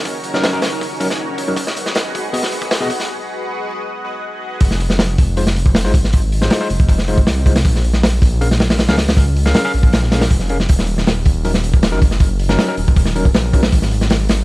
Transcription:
Already playing: F#1
0.05 C#4 D#4 F#4 A#4 C#5, kick, open hi-hat
0.23 open hi-hat
0.34 F#3 C#4 D#4 A#4, snare
0.43 snare, open hi-hat
0.53 F#3 C#4 D#4 A#4
0.62 D#1, snare, open hi-hat
0.81 kick, open hi-hat
1.00 F#3 C#4 D#4 F#4 A#4 C#5, open hi-hat
1.10 snare
1.19 A#1
1.38 open hi-hat
1.48 F#3 C#4 D#4 A#4
1.56 G#1 F#4 G#4 B4 D#5 F#5, kick, open hi-hat
1.67 snare
1.77 open hi-hat
1.86 snare
1.95 snare, open hi-hat
2.15 G#1, kick, open hi-hat
2.33 B3 F#4 G#4 D#5, open hi-hat
2.43 snare
2.52 F#4 G#4 B4 D#5 F#5, open hi-hat
2.62 kick
2.71 snare, open hi-hat
2.81 B1 B3 F#4 G#4 D#5, snare
2.90 kick, open hi-hat
3.00 snare
3.09 F#4 G#4 B4 D#5 F#5
4.04 F#4 G#4 B4 D#5 F#5
4.33 F#4 G#4 B4 D#5 F#5
4.61 F1, kick, open hi-hat
4.71 snare
4.80 open hi-hat
4.90 snare
4.99 snare, open hi-hat
5.18 F1, kick, open hi-hat
5.37 G#3 D#4 F4 C5, open hi-hat
5.47 snare
5.56 open hi-hat
5.66 kick
5.75 snare, open hi-hat
5.84 G#1 G#3 D#4 F4 C5, snare
5.94 kick, open hi-hat
6.04 snare
6.13 kick, open hi-hat
6.32 open hi-hat
6.42 G#3 D#4 F4 C5, snare
6.50 snare, open hi-hat
6.61 G#3 D#4 F4 C5
6.70 F1, open hi-hat
6.80 kick
6.89 kick, open hi-hat
6.99 snare
7.08 G#3 D#4 F4 C5, open hi-hat
7.18 kick
7.27 C2, snare, open hi-hat
7.46 G#3 D#4 F4 C5, kick, open hi-hat
7.56 snare, open hi-hat
7.65 A#1, kick, open hi-hat
7.75 snare
7.84 open hi-hat
7.93 snare
8.03 snare, open hi-hat
8.22 A#1, kick, open hi-hat
8.41 C#4 G#4 A#4 F5, open hi-hat
8.51 snare
8.60 snare, open hi-hat
8.70 snare, open hi-hat
8.78 snare, open hi-hat
8.88 C#2 C#4 G#4 A#4 F5, snare, open hi-hat
8.98 snare, open hi-hat
9.08 snare, open hi-hat
9.17 kick, open hi-hat
9.36 open hi-hat
9.46 C#4 G#4 A#4 F5, snare
9.54 snare, open hi-hat
9.65 C#4 G#4 A#4 F5
9.74 A#1, open hi-hat
9.83 kick
9.93 snare, open hi-hat
10.03 snare
10.12 C#4 G#4 A#4 F5, snare, open hi-hat
10.21 snare, open hi-hat
10.30 F1, kick, open hi-hat
10.40 snare
10.49 C#4 G#4 A#4 F5, open hi-hat
10.60 snare
10.69 D#1, kick, open hi-hat
10.79 snare
10.87 open hi-hat
10.98 snare
11.07 snare, open hi-hat
11.25 D#1, kick, open hi-hat
11.45 F#3 C#4 D#4 A#4, open hi-hat
11.54 snare
11.64 open hi-hat
11.74 kick
11.83 snare, open hi-hat
11.92 F#1 F#3 C#4 D#4 A#4, snare
12.02 kick, open hi-hat
12.11 snare
12.20 kick, open hi-hat
12.39 open hi-hat
12.49 F#3 C#4 D#4 A#4, snare
12.59 snare, open hi-hat
12.68 F#3 C#4 D#4 A#4
12.77 D#1, open hi-hat
12.88 kick
12.96 kick, open hi-hat
13.05 snare
13.15 F#3 C#4 D#4 A#4, open hi-hat
13.25 kick
13.34 A#1, snare, open hi-hat
13.53 F#3 C#4 D#4 A#4, kick, open hi-hat
13.63 snare, open hi-hat
13.72 G#1, kick, open hi-hat
13.82 snare
13.91 open hi-hat
14.01 snare
14.10 snare, open hi-hat
14.29 G#1, snare, open hi-hat

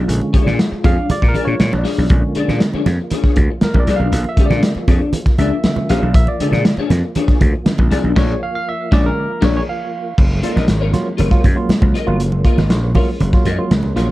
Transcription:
Already playing: F3 G#3 F4
0.08 A#1 D3 G#3 C#4, closed hi-hat, muted conga
0.21 muted conga
0.33 D4 G#4 D5, muted slap bass stroke, kick, closed hi-hat
0.46 A#2, snare, high conga
0.59 snare, closed hi-hat
0.71 muted clean electric guitar stroke, muted slap bass stroke
0.84 F2 D4 G#4 C#5 F5, kick, closed hi-hat, high conga, low conga
0.98 muted clean electric guitar stroke
1.10 D5, muted clean electric guitar stroke, closed hi-hat, muted conga, high conga, low conga
1.22 A#2, kick, snare
1.28 A#4
1.34 D4 G#4 D5, closed hi-hat, high conga
1.45 A#2 C#5, muted clean electric guitar stroke
1.60 A#2, snare, closed hi-hat, high conga
1.72 A#1, muted clean electric guitar stroke, muted conga, low conga
1.78 D5
1.84 D4 G#4 C#5, snare, open hi-hat
1.98 B1, muted clean electric guitar stroke, high conga
2.10 A#1 D3 G#3 A#3 C#4, kick, closed hi-hat
2.35 D4 G#4 D5, muted slap bass stroke, closed hi-hat
2.48 A#2, snare, high conga
2.60 muted clean electric guitar stroke, snare, closed hi-hat, muted conga
2.73 D4 G#4 C#5, muted slap bass stroke, muted conga
2.86 F2, muted clean electric guitar stroke, snare, closed hi-hat, high conga, low conga
3.01 muted clean electric guitar stroke
3.10 D4 G#4 C#5, closed hi-hat, muted conga, high conga
3.23 muted slap bass stroke, kick, snare
3.36 D2, muted clean electric guitar stroke, kick, closed hi-hat, high conga
3.50 muted clean electric guitar stroke
3.61 A#4, snare, closed hi-hat, muted conga, high conga
3.74 A#1, muted clean electric guitar stroke, kick, muted conga, low conga
3.80 D5
3.87 C2 D4 G#4 D5, snare, closed hi-hat
3.96 B1 F5
4.00 muted clean electric guitar stroke, high conga
4.12 A#1, closed hi-hat, muted conga
4.24 muted conga
4.29 E5
4.36 D3 G#3 C#4 D4 G#4 D5, muted slap bass stroke, kick, closed hi-hat
4.46 D5
4.50 A#2, snare, high conga
4.63 snare, closed hi-hat, muted conga
4.75 muted slap bass stroke, muted clean electric guitar stroke, muted conga
4.88 F2 D4 G#4 C#5, kick, closed hi-hat, high conga, low conga
5.02 muted clean electric guitar stroke
5.13 muted clean electric guitar stroke, closed hi-hat, muted conga, high conga
5.26 muted slap bass stroke, kick, snare, muted conga
5.38 C#2 D4 G#4 D5 E5, closed hi-hat, high conga
5.52 muted clean electric guitar stroke
5.64 D3 G#3 C#4, snare, closed hi-hat, high conga
5.76 muted clean electric guitar stroke, low conga
5.89 A#1 D4 G#4 C#5 F5, snare, closed hi-hat
6.02 B1, muted clean electric guitar stroke, high conga
6.14 A#1 E5, kick, closed hi-hat
6.27 D5, muted conga
6.39 C#3 D3 G#3 D4 G#4 D5, muted slap bass stroke, closed hi-hat
6.52 A#2, snare, high conga
6.65 muted clean electric guitar stroke, snare, closed hi-hat, muted conga
6.77 D4 G#4 C#5, muted slap bass stroke, muted conga
6.90 F2, muted clean electric guitar stroke, snare, closed hi-hat, high conga, low conga
7.04 muted clean electric guitar stroke
7.15 D4 G#4 C#5, closed hi-hat, muted conga, high conga
7.28 muted slap bass stroke, kick, snare, muted conga
7.40 D2, muted clean electric guitar stroke, kick, closed hi-hat, high conga
7.53 muted clean electric guitar stroke
7.66 D3 G#3 C#4, snare, closed hi-hat, high conga
7.78 A#1, muted clean electric guitar stroke, kick, low conga
7.91 C2 D4 G#4 D5, snare, closed hi-hat
8.04 B1, muted clean electric guitar stroke, high conga
8.16 A#1 D4 G#4 C#5 D5, kick, snare, crash
8.43 F5
8.55 F5
8.69 E5
8.91 A#1 D3 G#3 C#4 D4 G#4 C#5 D5, kick, snare
9.06 A#4
9.41 A#1 D4 G#4 C#5 D5, kick, snare, crash
9.57 C#5
9.69 F5
10.18 F#1 F3 G#3 A#3 C#4, kick, crash
10.42 A#3 F4 A#4 D#5, closed hi-hat
10.56 A#1, snare, high conga
10.68 G#1 A#3 F4, muted clean electric guitar stroke, snare, closed hi-hat
10.80 F4 A#4 C#5
10.92 F#3 A#3 F4, muted clean electric guitar stroke, snare, closed hi-hat, high conga, low conga
11.05 muted clean electric guitar stroke
11.17 F#1 F4 A#4 C#5, closed hi-hat, muted conga, high conga
11.31 F#3 A#3 F4, kick, snare, muted conga
11.44 F#2, muted clean electric guitar stroke, kick, closed hi-hat, high conga
11.56 F#3 A#3 F4, muted clean electric guitar stroke
11.69 muted slap bass stroke, snare, closed hi-hat, high conga
11.81 C#2 F#3 A#3 F4, muted clean electric guitar stroke, kick, low conga
11.94 F4 A#4 D#5, closed hi-hat
12.06 G1 F#3 A#3 F4, muted clean electric guitar stroke, high conga
12.19 F#1, closed hi-hat
12.32 muted conga
12.44 A#3 F4 A#4 D#5, kick, closed hi-hat
12.58 G#1, snare, high conga
12.70 A#1 A#3 F4, snare, closed hi-hat, muted conga
12.83 muted clean electric guitar stroke
12.95 F#3 A#3 F4 A#4 C#5, kick, open hi-hat, high conga, low conga
13.09 muted clean electric guitar stroke
13.20 F#1, muted clean electric guitar stroke, closed hi-hat, high conga
13.33 F#3 A#3 F4, kick, snare
13.45 F#2 F4 A#4 D#5, closed hi-hat, high conga
13.58 F#3 A#3 F4, muted clean electric guitar stroke
13.71 C#2, snare, closed hi-hat, muted conga, high conga
13.83 muted clean electric guitar stroke, muted conga, low conga
13.96 A#1 F#3 A#3 F4 A#4 C#5, snare, closed hi-hat
14.08 muted clean electric guitar stroke

